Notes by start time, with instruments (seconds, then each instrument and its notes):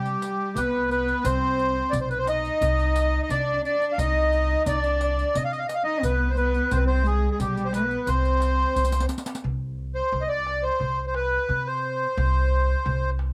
Already playing: upright bass C3, cello G3, accordion G4
0.05 riq
0.22 riq, darbuka tek
0.56 upright bass C2, cello B3, accordion B4, riq, darbuka dum
0.91 cello B3, accordion B4, riq
1.08 riq
1.23 upright bass C2, cello C4, accordion C5, riq, darbuka dum
1.59 riq
1.90 upright bass B1, accordion D5, riq, darbuka dum
2.01 accordion C5
2.10 accordion B4, riq
2.19 accordion C5
2.27 cello D#4, accordion D#5, riq, darbuka tek
2.45 riq
2.61 upright bass C2, riq, darbuka dum
2.79 riq, darbuka ka
2.96 riq, darbuka tek
3.23 accordion D#5
3.29 upright bass C2, cello D4, accordion D5, riq, darbuka dum
3.65 cello D4, accordion D5, riq
3.82 riq
3.92 accordion F5
3.98 upright bass C2, cello D#4, accordion D#5, riq, darbuka dum
4.32 riq
4.66 upright bass C2, cello D4, accordion D5, riq, darbuka dum
4.84 riq
5.01 accordion D5, riq, darbuka tek
5.18 riq, darbuka ka
5.35 upright bass C3, accordion D#5, riq, darbuka dum
5.45 accordion F5
5.52 accordion D#5, riq, darbuka ka
5.59 accordion F5
5.68 accordion D#5, riq, darbuka tek
5.75 accordion F5
5.84 cello D#4, accordion D#5
6.02 upright bass C2, cello B3, accordion B4, riq, darbuka dum
6.30 accordion C5
6.37 cello B3, accordion B4, riq, darbuka ka
6.54 riq
6.71 upright bass C2, cello C4, accordion C5, riq, darbuka dum
6.76 accordion B4
6.85 cello C4, accordion C5
7.04 cello G#3, accordion G#4, riq
7.31 accordion G#4
7.39 upright bass B1, cello G3, accordion G4, riq, darbuka dum
7.57 riq, darbuka ka
7.65 accordion C5
7.73 cello B3, accordion B4, riq, darbuka tek
7.91 riq
8.06 upright bass C2, cello C4, accordion C5, riq, darbuka dum
8.25 riq
8.40 riq, darbuka tek
8.75 upright bass C2, riq, darbuka tek
8.84 riq, darbuka ka
8.92 riq, darbuka tek
9.00 riq, darbuka ka
9.09 riq, darbuka tek
9.18 riq, darbuka ka
9.26 riq, darbuka tek
9.35 riq, darbuka ka
9.44 upright bass C2, darbuka dum
9.79 darbuka ka
9.95 accordion C5
10.12 upright bass C2, darbuka dum
10.21 accordion D#5
10.28 accordion D5
10.46 darbuka tek
10.63 accordion C5
10.80 upright bass C2, darbuka dum
11.07 accordion C5
11.14 accordion B4, darbuka tek
11.49 upright bass C3, darbuka dum
11.67 accordion C5
12.17 upright bass C2, darbuka dum
12.86 upright bass C2, darbuka dum
13.19 darbuka tek